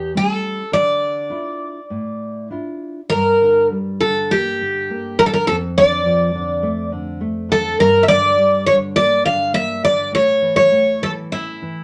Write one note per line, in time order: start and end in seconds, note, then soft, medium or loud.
0.00 0.13 E2 medium
0.00 0.11 G4 medium
0.14 0.61 G3 soft
0.14 0.61 A3 soft
0.14 0.61 C#4 medium
0.14 0.73 A4 medium
0.72 1.29 D3 medium
0.72 2.47 D5 medium
1.30 1.78 D4 soft
1.30 1.78 E4 soft
1.30 1.79 F4 soft
1.90 2.49 A2 medium
2.50 2.99 D4 soft
2.50 2.99 E4 soft
2.50 3.00 F4 soft
3.10 5.44 G2 medium
3.10 3.67 A#4 medium
3.41 3.71 D3 soft
3.71 4.00 G3 soft
4.01 4.30 D3 soft
4.01 4.32 A4 medium
4.30 4.59 A#3 medium
4.30 5.22 G4 medium
4.61 4.89 D3 soft
4.90 5.18 A#3 medium
5.19 5.47 D3 soft
5.19 5.26 A#4 medium
5.26 5.33 A4 medium
5.34 5.47 A#4 medium
5.47 7.77 F2 medium
5.47 5.55 A4 medium
5.78 6.05 D3 soft
5.78 6.90 D5 medium
6.05 6.34 F3 medium
6.35 6.63 D3 medium
6.63 6.92 A3 medium
6.92 7.21 D3 soft
7.21 7.50 A3 medium
7.49 7.78 D3 medium
7.49 7.80 A4 medium
7.80 10.08 G2 medium
7.80 8.03 A#4 medium
8.03 8.08 E5 medium
8.08 8.37 D3 medium
8.08 8.66 D5 medium
8.37 8.65 G3 medium
8.66 8.95 D3 medium
8.66 8.74 C#5 medium
8.95 9.24 A#3 medium
8.95 9.25 D5 medium
9.24 9.53 D3 soft
9.24 9.54 F5 medium
9.53 9.82 A#3 medium
9.53 9.84 E5 medium
9.83 10.11 D3 soft
9.83 10.11 D5 medium
10.12 11.84 A2 medium
10.12 10.55 C#5 medium
10.42 10.70 E3 soft
10.56 11.02 C#5 medium
10.72 11.00 A3 medium
11.02 11.30 E3 soft
11.02 11.11 A4 medium
11.32 11.60 C#4 medium
11.32 11.84 E4 medium
11.62 11.84 E3 soft